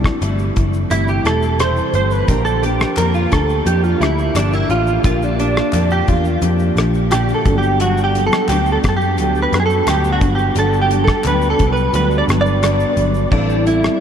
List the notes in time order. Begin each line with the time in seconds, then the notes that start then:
Already playing: E3 G3 A3 C4 D4 E4 G4
0.04 kick, cross-stick, shaker
0.21 G1 C3 G3 A3 E4, closed hi-hat, shaker
0.39 shaker
0.56 F#1 G3 A3 E4, kick, closed hi-hat, shaker
0.73 shaker
0.89 G1 C3 E3 G3 A3 C4 E4 G4, closed hi-hat, shaker
0.93 E4
1.08 G4, shaker
1.24 E1 G3 A3 E4 A4, cross-stick, closed hi-hat, shaker
1.42 shaker
1.59 C3 G3 A3 E4 C5, cross-stick, closed hi-hat, shaker
1.77 shaker
1.93 G1 G3 A3 E4 C5, closed hi-hat, shaker
2.11 B4, shaker
2.27 A#1 A#2 D3 F3 A#3 D4 G4 A#4, kick, closed hi-hat, shaker
2.45 A4, shaker
2.62 F3 A#3 D4 G4, closed hi-hat, shaker
2.80 cross-stick, shaker
2.97 F2 A#2 D3 F3 A#3 D4 G4 A#4, clap, closed hi-hat, shaker
3.14 F4, shaker
3.31 D2 F3 A#3 D4 G4 A4, kick, cross-stick, closed hi-hat, shaker
3.49 shaker
3.65 F2 F3 A#3 D4 G4, closed hi-hat, shaker
3.83 F4, shaker
4.00 D2 F3 A#3 D4 E4 G4, cross-stick, closed hi-hat, shaker
4.19 shaker
4.34 G1 A#2 D3 F3 A#3 D4 G4, cross-stick, clap, closed hi-hat, shaker
4.53 E4, shaker
4.68 A1 F3 A#3 D4 F4 G4, closed hi-hat, shaker
4.87 shaker
5.03 A#1 A#2 D3 F3 A#3 D4 F4 G4, kick, closed hi-hat, shaker
5.22 D4, shaker
5.38 F3 A#3 D4 G4, closed hi-hat, shaker
5.57 cross-stick, shaker
5.73 F2 A#2 D3 F3 A#3 D4 G4, clap, closed hi-hat, shaker
5.90 G4, shaker
6.07 E2 A#3 D4 F4 G4, kick, closed hi-hat, shaker
6.25 shaker
6.41 F2 F3 A#3 D4 G4, closed hi-hat, shaker
6.59 shaker
6.76 A#1 F3 A#3 D4 G4, cross-stick, closed hi-hat, shaker
6.94 shaker
7.11 A#2 D3 F3 A#3 D4 G4, cross-stick, clap, closed hi-hat, shaker
7.29 shaker
7.34 A4
7.45 G1 F#3 G3 A3 B3 D4 F#4, kick, closed hi-hat, shaker
7.52 B3
7.58 G4
7.63 shaker
7.80 G2 D3 F#3 B3 D4 F#4, closed hi-hat, shaker
7.98 shaker
8.04 G4
8.14 F#3 B3 D4, closed hi-hat, shaker
8.27 A4
8.32 cross-stick, shaker
8.49 D2 G2 D3 F#3 B3 D4 G4, clap, closed hi-hat, shaker
8.66 shaker
8.72 A4
8.83 F#2 F#3 B3 D4, kick, cross-stick, closed hi-hat, shaker
8.89 A4
8.97 G4
9.01 shaker
9.17 D2 D3 F#3 B3 D4 F#4, closed hi-hat, shaker
9.21 D4
9.35 shaker
9.42 B4
9.52 F#2 F#3 B3 D4, cross-stick, closed hi-hat, shaker
9.60 G#4
9.66 A4
9.70 shaker
9.87 D2 G2 D3 F#3 B3 D4 G4, cross-stick, clap, closed hi-hat, shaker
10.04 shaker
10.12 F#4
10.21 G1 F#3 G3 B3 D4 F#4, kick, closed hi-hat, shaker
10.35 G4, shaker
10.56 G1 G2 D3 F#3 B3 D4 A4, closed hi-hat, shaker
10.73 shaker
10.82 G4
10.90 F#3 B3 D4, closed hi-hat, shaker
11.04 A4, kick, shaker
11.08 cross-stick
11.24 D2 G2 D3 F#3 B3 D4 B4, clap, closed hi-hat, shaker
11.42 shaker
11.50 A4
11.58 C2 F#3 B3 D4, kick, closed hi-hat, shaker
11.73 B4, shaker
11.93 D2 D3 F#3 G3 B3 D4 F#4 B4, closed hi-hat, shaker
12.11 shaker
12.18 D5
12.27 G1 F#3 B3 D4, cross-stick, closed hi-hat, shaker
12.41 D5
12.46 shaker
12.62 G2 D3 F#3 B3 D4, cross-stick, clap, closed hi-hat, shaker
12.80 shaker
12.95 G1 F#3 B3 D4, closed hi-hat, shaker
13.14 shaker
13.31 A1 A2 E3 G3 C4 D4 E4 A4, kick, crash
13.50 shaker
13.65 G3 C4 E4 A4, closed hi-hat, shaker
13.84 cross-stick, shaker